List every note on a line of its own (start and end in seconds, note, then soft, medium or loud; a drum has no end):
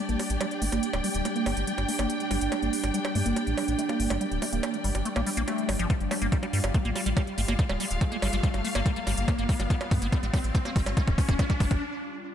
0.00 12.35 G3 medium
0.00 5.92 D4 medium
0.00 11.81 G4 medium
0.00 11.81 D5 medium
0.00 6.50 G5 medium
0.00 0.40 A5 medium
0.00 riser medium
0.09 0.16 A1 medium
0.09 0.31 A#3 medium
0.09 closed hi-hat soft
0.19 open hi-hat loud
0.19 high bongo soft
0.30 0.37 A1 medium
0.30 0.33 G3 medium
0.30 closed hi-hat medium
0.41 0.46 G3 medium
0.41 closed hi-hat medium
0.41 high bongo medium
0.51 closed hi-hat soft
0.62 0.69 G1 medium
0.62 0.65 A3 medium
0.62 open hi-hat loud
0.72 0.79 G1 medium
0.72 0.95 A#3 medium
0.72 closed hi-hat medium
0.72 high bongo soft
0.83 closed hi-hat medium
0.93 1.01 D1 medium
0.93 0.97 G3 medium
0.93 closed hi-hat soft
0.93 high bongo medium
1.04 1.09 G3 medium
1.04 open hi-hat loud
1.15 1.22 D1 medium
1.15 closed hi-hat medium
1.25 1.28 A3 medium
1.25 closed hi-hat medium
1.25 high bongo soft
1.36 1.58 A#3 medium
1.36 closed hi-hat soft
1.46 1.53 G1 medium
1.46 open hi-hat loud
1.46 high bongo medium
1.57 1.64 G1 medium
1.57 1.60 G3 medium
1.57 closed hi-hat medium
1.67 1.73 G3 medium
1.67 closed hi-hat medium
1.78 1.85 G1 medium
1.78 closed hi-hat soft
1.78 high bongo soft
1.88 1.92 A3 medium
1.88 open hi-hat loud
1.99 2.06 G1 medium
1.99 2.22 A#3 medium
1.99 closed hi-hat medium
1.99 high bongo medium
2.10 closed hi-hat medium
2.20 2.23 G3 medium
2.20 closed hi-hat soft
2.31 2.38 G1 medium
2.31 2.36 G3 medium
2.31 open hi-hat loud
2.31 high bongo soft
2.41 2.49 G1 medium
2.41 closed hi-hat medium
2.52 2.55 A3 medium
2.52 closed hi-hat soft
2.52 high bongo medium
2.62 2.70 G1 medium
2.62 2.85 A#3 medium
2.62 closed hi-hat soft
2.73 open hi-hat loud
2.84 2.91 G1 medium
2.84 2.87 G3 medium
2.84 closed hi-hat medium
2.84 high bongo soft
2.94 2.99 G3 medium
2.94 closed hi-hat medium
3.05 closed hi-hat soft
3.05 high bongo medium
3.15 3.22 G2 medium
3.15 3.18 A3 medium
3.15 open hi-hat loud
3.26 3.33 G1 medium
3.26 3.48 A#3 medium
3.26 closed hi-hat medium
3.36 closed hi-hat medium
3.36 high bongo soft
3.47 3.54 A1 medium
3.47 3.50 G3 medium
3.47 closed hi-hat soft
3.57 3.63 G3 medium
3.57 open hi-hat loud
3.57 high bongo medium
3.68 3.75 A1 medium
3.68 closed hi-hat soft
3.79 3.82 A3 medium
3.79 closed hi-hat medium
3.89 4.12 A#3 medium
3.89 closed hi-hat soft
3.89 high bongo soft
4.00 4.07 G1 medium
4.00 open hi-hat loud
4.10 4.18 G1 medium
4.10 4.14 G3 medium
4.10 closed hi-hat medium
4.10 high bongo medium
4.21 4.26 G3 medium
4.21 closed hi-hat medium
4.31 4.39 D1 medium
4.31 closed hi-hat soft
4.42 4.45 A3 medium
4.42 open hi-hat loud
4.42 high bongo soft
4.53 4.60 D1 medium
4.53 4.75 A#3 medium
4.53 closed hi-hat soft
4.63 closed hi-hat soft
4.63 high bongo medium
4.74 4.77 G3 medium
4.74 closed hi-hat soft
4.84 4.91 G1 loud
4.84 4.90 G3 medium
4.84 open hi-hat loud
4.95 5.02 G1 medium
4.95 closed hi-hat soft
4.95 high bongo soft
5.05 5.09 A3 medium
5.05 closed hi-hat medium
5.16 5.23 A#1 medium
5.16 5.21 A#3 medium
5.16 closed hi-hat soft
5.16 high bongo medium
5.27 5.30 G3 medium
5.27 open hi-hat loud
5.37 5.44 A#1 medium
5.37 5.42 A#3 loud
5.37 closed hi-hat soft
5.48 5.70 A3 medium
5.48 closed hi-hat medium
5.48 high bongo soft
5.58 closed hi-hat soft
5.69 5.76 G1 loud
5.69 5.74 F3 medium
5.69 open hi-hat loud
5.69 high bongo medium
5.79 5.87 G1 medium
5.79 5.87 F3 loud
5.79 closed hi-hat soft
5.90 5.95 G3 medium
5.90 12.35 F4 medium
5.90 kick loud
5.90 closed hi-hat medium
5.90 high bongo soft
6.00 6.08 G1 medium
6.00 closed hi-hat soft
6.11 6.14 A3 medium
6.11 open hi-hat loud
6.11 high bongo medium
6.22 6.29 G1 medium
6.22 6.27 A#3 medium
6.22 closed hi-hat soft
6.32 6.37 G3 medium
6.32 kick loud
6.32 closed hi-hat medium
6.37 11.81 F5 medium
6.43 6.46 G3 medium
6.43 closed hi-hat soft
6.43 high bongo soft
6.53 6.60 G2 loud
6.53 6.59 G3 medium
6.53 open hi-hat loud
6.64 6.71 G1 medium
6.64 closed hi-hat medium
6.64 high bongo medium
6.74 6.78 A3 medium
6.74 kick loud
6.74 closed hi-hat medium
6.85 6.92 A1 medium
6.85 6.90 A#3 medium
6.85 closed hi-hat soft
6.95 7.01 G3 medium
6.95 open hi-hat loud
6.95 high bongo soft
7.06 7.13 A1 medium
7.06 7.09 G3 medium
7.06 closed hi-hat soft
7.17 7.22 G3 medium
7.17 kick loud
7.17 closed hi-hat medium
7.17 high bongo medium
7.27 closed hi-hat soft
7.38 7.45 G1 medium
7.38 7.41 A3 medium
7.38 open hi-hat loud
7.48 7.56 G1 medium
7.48 7.54 A#3 medium
7.48 closed hi-hat medium
7.48 high bongo soft
7.59 7.64 G3 medium
7.59 kick loud
7.59 closed hi-hat medium
7.69 7.77 D1 medium
7.69 7.73 G3 medium
7.69 closed hi-hat soft
7.69 high bongo medium
7.80 7.85 G3 medium
7.80 open hi-hat loud
7.91 7.98 D1 medium
7.91 closed hi-hat medium
8.01 8.04 A3 medium
8.01 kick loud
8.01 closed hi-hat medium
8.01 high bongo soft
8.12 8.17 A#3 medium
8.12 closed hi-hat soft
8.22 8.29 G1 loud
8.22 8.28 G3 medium
8.22 open hi-hat loud
8.22 high bongo medium
8.33 8.40 G1 medium
8.33 8.36 G3 medium
8.33 closed hi-hat medium
8.43 8.49 G3 medium
8.43 kick loud
8.43 closed hi-hat medium
8.54 8.61 G1 medium
8.54 closed hi-hat soft
8.54 high bongo soft
8.65 8.68 A3 medium
8.65 open hi-hat loud
8.75 8.82 G1 medium
8.75 8.80 A#3 medium
8.75 closed hi-hat medium
8.75 high bongo medium
8.86 8.91 G3 medium
8.86 kick loud
8.86 closed hi-hat medium
8.96 8.99 G3 medium
8.96 closed hi-hat soft
9.07 9.14 G1 loud
9.07 9.12 G3 medium
9.07 open hi-hat loud
9.07 high bongo soft
9.17 9.25 G1 medium
9.17 closed hi-hat medium
9.28 9.31 A3 medium
9.28 kick loud
9.28 closed hi-hat medium
9.28 high bongo medium
9.38 9.46 G1 medium
9.38 9.44 A#3 medium
9.38 closed hi-hat soft
9.49 9.54 G3 medium
9.49 kick loud
9.49 open hi-hat loud
9.60 9.67 G1 medium
9.60 9.63 G3 medium
9.60 closed hi-hat medium
9.60 high bongo soft
9.70 9.76 G3 medium
9.70 kick loud
9.70 closed hi-hat medium
9.81 closed hi-hat soft
9.81 high bongo medium
9.91 9.98 G2 loud
9.91 9.95 A3 medium
9.91 kick loud
9.91 open hi-hat loud
10.02 10.09 G1 medium
10.02 10.07 A#3 medium
10.02 closed hi-hat medium
10.12 10.18 G3 medium
10.12 kick loud
10.12 closed hi-hat medium
10.12 high bongo soft
10.23 10.30 A1 medium
10.23 10.26 G3 medium
10.23 closed hi-hat soft
10.34 10.39 G3 medium
10.34 kick loud
10.34 open hi-hat loud
10.34 high bongo medium
10.44 10.51 A1 medium
10.44 closed hi-hat medium
10.55 10.58 A3 medium
10.55 kick loud
10.55 closed hi-hat medium
10.65 10.71 A#3 medium
10.65 closed hi-hat soft
10.65 high bongo soft
10.76 10.83 G1 medium
10.76 10.81 G3 medium
10.76 kick loud
10.76 open hi-hat loud
10.86 10.94 G1 medium
10.86 10.90 G3 medium
10.86 closed hi-hat medium
10.86 high bongo medium
10.97 11.02 G3 medium
10.97 kick loud
10.97 closed hi-hat medium
11.08 11.15 D1 medium
11.08 kick medium
11.08 closed hi-hat soft
11.18 11.21 A3 medium
11.18 kick loud
11.18 open hi-hat loud
11.18 high bongo soft
11.29 11.36 D1 medium
11.29 11.34 A#3 medium
11.29 kick loud
11.29 closed hi-hat medium
11.39 11.45 G3 medium
11.39 kick loud
11.39 closed hi-hat medium
11.39 high bongo medium
11.50 11.53 G3 medium
11.50 kick medium
11.50 closed hi-hat soft
11.60 11.68 G1 medium
11.60 11.66 G3 medium
11.60 kick loud
11.60 open hi-hat loud
11.71 11.78 G1 medium
11.71 kick medium
11.71 closed hi-hat medium
11.71 high bongo soft